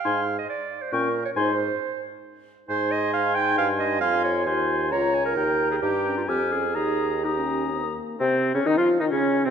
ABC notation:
X:1
M:3/4
L:1/16
Q:1/4=133
K:Ablyd
V:1 name="Flute"
c'2 z6 _d'2 z2 | c'2 z8 z2 | [K:Dblyd] c'12 | c'4 c'4 b4 |
b4 b4 f'4 | e'4 e'6 z2 | c3 d e f2 e d3 c |]
V:2 name="Oboe"
a2 z6 g2 z2 | a2 z8 z2 | [K:Dblyd] a12 | a4 a4 b2 a2 |
g4 g4 a4 | b4 b6 z2 | C3 D E F2 E D3 C |]
V:3 name="Clarinet"
f3 e d3 c B3 _d | c6 z6 | [K:Dblyd] c2 e2 f2 g2 f2 e2 | f2 d2 c4 d3 B- |
B3 A G3 F G2 A2 | A4 G4 z4 | C3 D E F2 E D3 C |]
V:4 name="French horn"
E2 z6 _D2 z2 | E2 z8 z2 | [K:Dblyd] E12 | F4 F4 F4 |
E4 E2 D2 C2 D2 | E4 E D3 C B,3 | C3 D E F2 E D3 C |]
V:5 name="Bassoon" clef=bass
A,,4 z4 B,,4 | A,,4 z8 | [K:Dblyd] A,,8 G,,4 | F,,4 E,,4 D,,4 |
E,,4 G,,4 F,,4 | E,,8- E,,2 z2 | C,3 D, E, F,2 E, D,3 C, |]